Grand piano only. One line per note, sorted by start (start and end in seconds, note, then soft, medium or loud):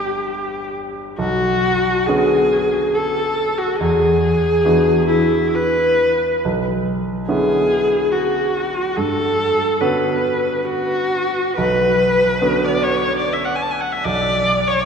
0.00 1.14 G1 medium
0.00 1.12 G2 medium
0.00 1.12 G3 soft
0.00 1.13 B3 soft
0.00 1.13 D4 soft
0.00 1.14 F#4 soft
1.19 2.05 B1 medium
2.08 3.75 D3 soft
2.08 3.76 B3 soft
2.08 3.76 C#4 soft
2.08 3.76 F#4 medium
3.80 4.62 E2 medium
4.65 6.40 E3 soft
4.65 6.40 B3 soft
4.65 6.40 D4 soft
4.65 6.41 F#4 soft
6.45 7.26 B1 medium
7.28 8.93 D3 soft
7.28 8.93 B3 soft
7.28 8.93 C#4 soft
7.28 8.93 E4 soft
8.97 9.78 G2 medium
9.80 11.53 D3 soft
9.80 11.53 B3 soft
9.80 11.53 C#4 soft
9.80 11.54 F#4 soft
11.58 12.39 B1 medium
12.41 14.01 D3 soft
12.41 14.01 B3 soft
12.41 14.01 C#4 soft
12.41 14.01 F#4 soft
14.05 14.85 B1 medium